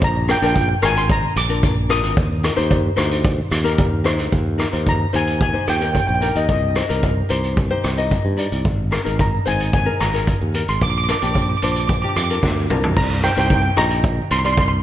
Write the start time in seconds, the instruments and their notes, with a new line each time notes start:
0.02 fingered electric bass A#1, steel pan A#5, kick, closed hi-hat, shaker
0.28 ukulele D4 F4 A#4, steel pan G5, cross-stick, closed hi-hat, shaker
0.38 ukulele D4 F4, steel pan G5, closed hi-hat
0.42 fingered electric bass A#1, ukulele A#4, shaker
0.46 steel pan G5
0.55 steel pan G5, kick, closed hi-hat, shaker
0.61 steel pan G5
0.69 steel pan G5
0.82 fingered electric bass G#1, ukulele D4 F4 A#4, steel pan G#5, cross-stick, closed hi-hat, shaker
0.96 steel pan C6, closed hi-hat
1.09 steel pan A#5, kick, closed hi-hat, shaker
1.36 fingered electric bass A#1, steel pan D6, closed hi-hat, shaker
1.49 ukulele D4 F4 A#4, closed hi-hat
1.63 kick, closed hi-hat, shaker
1.89 ukulele D4 F4 A#4, steel pan D#6, cross-stick, closed hi-hat, shaker
2.04 fingered electric bass G#1, closed hi-hat, shaker
2.17 fingered electric bass D#2, kick, closed hi-hat, shaker
2.43 ukulele D#4 G4 A#4, cross-stick, closed hi-hat, shaker
2.56 fingered electric bass D#2, ukulele D#4 G4 C5, closed hi-hat
2.71 kick, closed hi-hat, shaker
2.96 fingered electric bass D2, ukulele D#4 G4 C5, cross-stick, closed hi-hat, shaker
3.11 closed hi-hat, shaker
3.24 kick, closed hi-hat, shaker
3.51 fingered electric bass D#2, cross-stick, closed hi-hat, shaker
3.64 ukulele D#4 G4 A#4, closed hi-hat, shaker
3.78 kick, closed hi-hat, shaker
4.04 ukulele D#4 G4 C5, cross-stick, closed hi-hat, shaker
4.19 fingered electric bass D2, closed hi-hat, shaker
4.32 fingered electric bass D#2, kick, closed hi-hat, shaker
4.58 ukulele D#4 G4 A#4, cross-stick, closed hi-hat, shaker
4.72 fingered electric bass D#2, ukulele D#4 G4 C5, closed hi-hat
4.87 steel pan A#5, kick, closed hi-hat, shaker
5.13 fingered electric bass D#2, ukulele D#4 G4 C5, steel pan G#5, closed hi-hat, shaker
5.27 closed hi-hat, shaker
5.40 steel pan G#5, kick, closed hi-hat, shaker
5.53 ukulele D#4 G4 C5
5.67 fingered electric bass D#2, steel pan G5, cross-stick, closed hi-hat, shaker
5.77 ukulele D#4 G4, steel pan G5, closed hi-hat
5.82 ukulele A#4, steel pan G5
5.93 steel pan G5, kick, closed hi-hat, shaker
6.00 steel pan G5
6.07 fingered electric bass A#1, steel pan G5
6.15 steel pan G5
6.21 ukulele D#4 G4 A#4, steel pan G5, closed hi-hat, shaker
6.35 fingered electric bass D#2, steel pan D#5, closed hi-hat, shaker
6.48 fingered electric bass C2, steel pan D#5, kick, closed hi-hat, shaker
6.75 ukulele D#4 G4 C5, cross-stick, closed hi-hat, shaker
6.88 fingered electric bass C2, ukulele D#4 G4 A#4, closed hi-hat
7.02 kick, closed hi-hat, shaker
7.29 fingered electric bass C2, ukulele D#4 G4 C5, closed hi-hat, shaker
7.43 closed hi-hat, shaker
7.57 kick, closed hi-hat, shaker
7.70 ukulele D#4 G4 C5
7.84 fingered electric bass C2, cross-stick, closed hi-hat, shaker
7.97 ukulele D#4 G4 D#5, closed hi-hat
8.11 kick, closed hi-hat, shaker
8.25 fingered electric bass G2
8.37 ukulele D#4 G4 D5, closed hi-hat, shaker
8.51 fingered electric bass C2, closed hi-hat, shaker
8.64 fingered electric bass G#1, kick, closed hi-hat, shaker
8.91 ukulele D#4 G#4 A#4, cross-stick, closed hi-hat, shaker
9.04 fingered electric bass G#1, ukulele D#4 G#4 A#4, closed hi-hat
9.19 steel pan A#5, kick, closed hi-hat, shaker
9.46 fingered electric bass G#1, ukulele D#4 G#4 C5, steel pan G#5, closed hi-hat, shaker
9.59 closed hi-hat, shaker
9.73 steel pan G#5, kick, closed hi-hat, shaker
9.86 ukulele D#4 G#4 A#4
10.00 fingered electric bass G#1, steel pan A#5, cross-stick, closed hi-hat, shaker
10.13 ukulele D#4 G#4 A#4, closed hi-hat
10.27 kick, closed hi-hat, shaker
10.41 fingered electric bass D#2
10.54 ukulele D#4 G#4 A#4, closed hi-hat, shaker
10.68 fingered electric bass G#1, steel pan C6, closed hi-hat, shaker
10.81 fingered electric bass A#1, steel pan D6, kick, closed hi-hat, shaker
10.90 steel pan D6
10.98 steel pan D6
11.04 steel pan D6, shaker
11.08 ukulele D4 F4 A#4, steel pan D6, cross-stick, closed hi-hat
11.19 fingered electric bass A#1, ukulele D4 F4 G4, steel pan D6, closed hi-hat, shaker
11.27 steel pan D6
11.34 steel pan D6, kick, closed hi-hat, shaker
11.42 steel pan D6
11.49 steel pan D6
11.57 steel pan D6
11.62 fingered electric bass A#1, ukulele D4 F4 C5, steel pan D6, closed hi-hat, shaker
11.72 steel pan D6, closed hi-hat
11.80 steel pan D6
11.87 steel pan D6, kick, closed hi-hat, shaker
11.94 steel pan D6
12.02 ukulele D4 F4 G4, steel pan D6
12.09 steel pan D6
12.15 fingered electric bass F2, steel pan D6, cross-stick, closed hi-hat, shaker
12.24 steel pan D6
12.29 ukulele D4 F4 A#4, closed hi-hat, shaker
12.42 fingered electric bass D2, kick, snare, shaker
12.69 fingered electric bass C2, ukulele D4 F4 A#4, mid tom, shaker
12.84 floor tom
12.96 fingered electric bass C2, steel pan A#5, kick, crash
13.23 ukulele D#4 G4 C5, steel pan G5, cross-stick, closed hi-hat
13.32 steel pan G5
13.36 fingered electric bass C2, ukulele D#4 G4 C5, steel pan G5, closed hi-hat
13.47 steel pan G5, kick, closed hi-hat
13.55 steel pan G5
13.62 steel pan G5
13.76 fingered electric bass A#1, ukulele D#4 G4 D#5, steel pan A#5, cross-stick, closed hi-hat
13.90 closed hi-hat
14.04 kick, closed hi-hat
14.30 fingered electric bass C2, steel pan C6, closed hi-hat
14.39 steel pan C6
14.44 ukulele D#4 G4 D5, steel pan C6, closed hi-hat
14.53 steel pan C6
14.57 steel pan C6, kick, closed hi-hat
14.68 steel pan C6